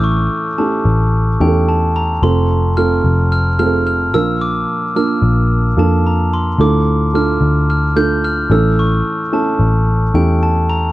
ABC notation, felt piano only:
X:1
M:4/4
L:1/16
Q:"Swing 16ths" 1/4=110
K:Aphr
V:1 name="Felt piano"
[A,^CEA]3 z [A,CEG]4- [A,CEG] z [A,CEGA]4- [A,CEGA] z | [A,CFA]4 [A,CFA]4- [A,CFA] z [A,CF^GA]4 [B,DFB]2- | [B,DFB]3 z [B,DFB]4- [B,DFB] z [B,DFA]4- [B,DFA] z | [A,DFA]4 [A,DFA]4- [A,DFA] z [A,DFA]4 [A,^CEA]2- |
[A,^CEA]3 z [A,CEA]4- [A,CEA] z [A,CEG]4- [A,CEG] z |]
V:2 name="Felt piano" clef=bass
[A,,E,]4 z12 | C,6 z8 [B,,F,]2- | [B,,F,]4 z12 | A,,6 z8 [A,,E,]2- |
[A,,E,]4 z12 |]